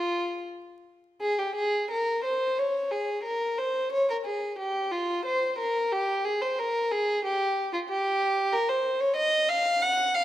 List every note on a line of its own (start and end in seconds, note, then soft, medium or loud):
0.00 0.48 F4 medium
1.21 1.37 G#4 medium
1.39 1.56 G4 medium
1.55 1.90 G#4 medium
1.91 2.24 A#4 medium
2.24 2.58 C5 medium
2.58 2.92 C#5 medium
2.91 3.24 G#4 medium
3.23 3.57 A#4 medium
3.58 3.92 C5 medium
3.92 4.09 C#5 medium
4.10 4.16 A#4 medium
4.25 4.58 G#4 medium
4.59 4.91 G4 medium
4.92 5.25 F4 medium
5.25 5.58 C5 medium
5.58 5.91 A#4 medium
5.92 6.26 G4 medium
6.25 6.42 G#4 medium
6.42 6.59 C5 medium
6.59 6.92 A#4 medium
6.92 7.24 G#4 medium
7.25 7.72 G4 medium
7.73 7.80 F4 medium
7.89 8.52 G4 medium
8.53 8.69 A#4 medium
8.69 9.00 C5 medium
9.00 9.16 C#5 medium
9.16 9.48 D#5 medium
9.49 9.82 F5 loud
9.82 10.15 F#5 loud
10.15 10.24 F5 medium